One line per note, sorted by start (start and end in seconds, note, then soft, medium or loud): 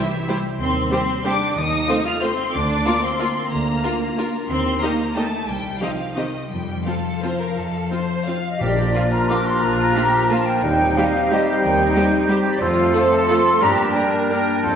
0.00 0.61 C3 medium
0.00 0.29 E3 medium
0.00 0.43 G3 medium
0.00 0.11 G4 medium
0.00 0.27 C5 medium
0.00 0.29 E5 medium
0.12 1.08 G4 medium
0.28 0.36 G3 medium
0.28 0.36 E4 medium
0.28 0.37 G4 medium
0.28 0.91 C5 medium
0.28 0.37 C5 medium
0.45 0.74 G3 medium
0.60 0.86 D#2 medium
0.60 1.56 D#3 medium
0.60 0.89 C4 medium
0.60 0.89 C6 medium
0.76 1.40 G3 medium
0.91 0.99 G3 medium
0.91 0.99 C4 medium
0.91 1.24 C4 medium
0.91 1.00 G4 medium
0.91 1.00 C5 medium
0.91 1.24 C6 medium
1.09 1.58 G4 medium
1.25 1.33 G3 medium
1.25 1.33 C4 medium
1.25 1.56 D4 medium
1.25 1.33 G4 medium
1.25 1.33 C5 medium
1.25 1.87 C5 medium
1.25 1.56 D6 loud
1.41 1.58 G3 medium
1.57 1.83 D#2 medium
1.57 2.55 D#3 medium
1.57 2.05 D#4 medium
1.57 2.04 D#6 loud
1.72 2.37 A3 medium
1.88 1.97 A3 medium
1.88 1.97 C4 medium
1.88 1.96 F4 medium
1.88 1.96 C5 medium
1.88 2.21 C5 medium
2.05 2.12 F4 medium
2.05 2.55 A4 medium
2.05 2.22 F6 loud
2.21 2.30 A3 medium
2.21 2.53 C4 medium
2.21 2.31 C4 medium
2.21 2.29 F4 medium
2.21 2.29 C5 medium
2.21 2.55 C5 medium
2.21 2.54 C6 loud
2.38 2.55 A3 medium
2.53 2.81 D2 medium
2.53 3.50 D3 medium
2.53 3.03 D4 medium
2.53 3.03 D6 loud
2.70 3.35 A#3 medium
2.86 2.94 A#3 medium
2.86 2.94 F4 medium
2.86 2.94 A#4 medium
2.86 3.18 A#4 medium
3.02 3.51 C4 medium
3.02 4.00 F4 medium
3.02 3.51 C6 medium
3.19 3.27 A#3 medium
3.19 3.27 F4 medium
3.19 3.27 A#4 medium
3.19 3.83 A#4 medium
3.36 4.33 A#3 soft
3.50 3.78 D2 medium
3.50 4.52 D3 medium
3.50 4.35 A#3 medium
3.50 4.33 A#5 medium
3.67 4.51 D4 medium
3.84 3.92 A#3 medium
3.84 3.92 F4 medium
3.84 3.92 A#4 soft
3.84 4.17 A#4 medium
4.01 4.51 F4 medium
4.18 4.27 A#3 medium
4.18 4.26 F4 medium
4.18 4.27 F4 medium
4.18 4.26 A#4 soft
4.18 4.81 A#4 medium
4.35 5.49 A#3 medium
4.50 4.77 D#2 medium
4.50 5.49 D#3 medium
4.50 4.80 C4 medium
4.50 4.80 C6 loud
4.66 5.31 D#4 soft
4.82 5.16 A#3 medium
4.82 4.91 A#3 medium
4.82 4.91 D#4 medium
4.82 4.90 G4 medium
4.82 5.15 A#4 medium
4.82 4.90 D#5 medium
4.82 5.16 A#5 medium
5.00 6.52 D#5 soft
5.16 5.48 A3 medium
5.16 5.25 A#3 medium
5.16 5.25 D#4 medium
5.16 5.24 G4 medium
5.16 5.49 A#4 soft
5.16 5.24 D#5 soft
5.16 5.48 A5 medium
5.32 6.52 D#4 soft
5.48 5.75 C2 medium
5.48 6.52 C3 medium
5.48 5.81 G3 medium
5.48 5.81 G5 medium
5.64 6.32 C4 soft
5.81 6.16 F3 medium
5.81 5.90 C4 medium
5.81 5.90 D#4 medium
5.81 6.15 G4 soft
5.81 5.90 G4 soft
5.81 5.90 D#5 soft
5.81 6.16 F5 medium
5.99 6.85 C5 soft
6.16 6.50 D#3 medium
6.16 6.24 C4 soft
6.16 6.24 D#4 soft
6.16 6.52 G4 soft
6.16 6.25 G4 soft
6.16 6.51 D#5 medium
6.16 6.25 D#5 soft
6.33 7.73 C4 soft
6.50 6.80 F2 medium
6.50 7.56 F3 medium
6.50 6.85 G3 medium
6.50 6.86 G5 medium
6.68 7.40 F4 soft
6.86 8.44 F3 medium
6.86 6.95 C4 medium
6.86 6.95 F4 soft
6.86 7.21 A4 medium
6.86 7.22 C5 soft
6.86 8.45 F5 medium
7.05 8.08 F5 soft
7.23 7.31 C4 soft
7.23 7.31 F4 medium
7.23 7.91 C5 soft
7.23 7.41 C5 medium
7.41 8.43 F4 soft
7.41 7.58 A#4 medium
7.57 7.86 F2 soft
7.57 10.65 F3 medium
7.57 7.92 A4 medium
7.74 8.62 C4 soft
7.92 8.00 C4 medium
7.92 8.00 F4 soft
7.92 8.26 C5 soft
7.92 8.27 C5 medium
8.10 9.28 F5 soft
8.27 8.36 C4 soft
8.27 8.35 F4 soft
8.27 8.61 F5 medium
8.44 8.94 F4 soft
8.44 8.60 D#5 medium
8.60 8.89 A#1 medium
8.60 9.61 A#2 medium
8.60 9.09 A#2 medium
8.60 10.60 F3 medium
8.60 10.60 A#3 medium
8.60 10.64 D4 medium
8.60 8.93 G4 medium
8.60 10.60 A#4 medium
8.60 9.12 D5 medium
8.78 9.78 A#3 medium
8.95 9.03 A#3 medium
8.95 9.03 F4 medium
8.95 9.30 F4 medium
8.95 9.95 F4 medium
8.95 9.03 F5 medium
9.11 9.45 A#4 medium
9.11 9.29 A#5 medium
9.29 9.38 A#3 medium
9.29 9.38 F4 medium
9.29 9.62 G4 medium
9.29 9.37 F5 medium
9.29 10.30 F5 medium
9.29 9.46 D6 loud
9.46 10.12 A#4 medium
9.46 9.62 C6 medium
9.61 9.90 A#1 medium
9.61 10.65 A#2 medium
9.61 9.96 F4 medium
9.61 10.30 A#5 loud
9.96 10.04 A#3 medium
9.96 10.65 F4 medium
9.96 10.05 F4 medium
9.96 10.31 G4 medium
9.96 10.04 F5 medium
10.14 10.47 A#4 medium
10.30 10.38 A#3 medium
10.30 10.63 F4 medium
10.30 10.40 F4 medium
10.30 10.38 F5 medium
10.30 10.65 F5 medium
10.30 10.47 A5 medium
10.47 10.65 A#4 medium
10.47 10.97 G5 medium
10.63 10.91 D#2 medium
10.63 11.62 D#3 medium
10.63 12.58 G3 medium
10.63 12.58 C4 medium
10.63 12.62 D#4 medium
10.63 11.32 D#4 medium
10.63 12.58 C5 medium
10.80 11.78 G3 medium
10.96 11.05 G3 medium
10.96 11.46 G4 medium
10.96 11.05 G4 medium
10.96 11.05 C5 medium
10.96 11.31 F5 medium
11.15 12.11 C5 medium
11.31 11.40 G3 medium
11.31 11.63 G4 medium
11.31 11.40 G4 medium
11.31 11.40 C5 medium
11.31 11.48 D#5 medium
11.31 12.29 G5 medium
11.47 11.94 G4 medium
11.47 11.63 F5 loud
11.63 11.90 D#2 medium
11.63 12.63 D#3 medium
11.63 12.28 D#4 medium
11.63 12.28 G5 loud
11.79 12.63 G3 medium
11.95 12.03 G3 medium
11.95 12.04 G4 medium
11.95 12.04 C5 medium
12.12 13.11 C5 medium
12.29 12.37 G3 medium
12.29 12.37 G4 medium
12.29 12.62 G4 medium
12.29 12.38 C5 medium
12.29 12.63 G5 medium
12.45 12.63 G4 medium
12.45 12.60 D5 medium
12.61 12.89 F2 medium
12.61 13.63 F2 medium
12.61 13.64 F3 medium
12.61 13.60 A3 medium
12.61 13.60 C4 medium
12.61 13.61 F4 medium
12.61 12.94 F4 loud
12.61 13.63 A4 medium
12.61 13.12 C5 medium
12.78 13.63 A3 medium
12.94 13.02 A3 medium
12.94 13.02 F4 medium
12.94 13.60 A4 medium
12.94 13.03 C5 medium
13.11 13.63 C5 medium
13.11 13.29 A5 loud
13.29 13.37 A3 medium
13.29 13.38 F4 medium
13.29 13.38 C5 medium
13.29 13.63 F5 medium
13.29 13.62 C6 loud
13.46 13.63 A4 medium
13.61 13.89 G2 medium
13.61 14.65 G2 medium
13.61 14.76 G3 medium
13.61 14.62 A#3 medium
13.61 14.65 D4 medium
13.61 14.64 D4 medium
13.61 13.95 G4 medium
13.61 14.63 A#4 medium
13.61 13.77 A#5 loud
13.76 14.65 A#3 medium
13.76 13.93 A5 medium
13.94 14.02 A#3 medium
13.94 14.65 D4 medium
13.94 14.03 D4 medium
13.94 14.03 G4 medium
13.94 14.29 A#4 medium
13.94 14.12 G5 loud
14.11 14.65 G4 medium
14.11 14.29 A5 medium
14.28 14.38 A#3 medium
14.28 14.38 D4 medium
14.28 14.38 G4 medium
14.28 14.63 A#4 medium
14.28 14.65 D5 medium
14.28 14.62 G5 medium
14.47 14.65 A#4 medium
14.63 14.76 F2 medium
14.63 14.76 F3 medium
14.63 14.76 C4 medium
14.63 14.76 F4 medium
14.63 14.76 A4 medium
14.63 14.76 C5 medium
14.63 14.76 A5 loud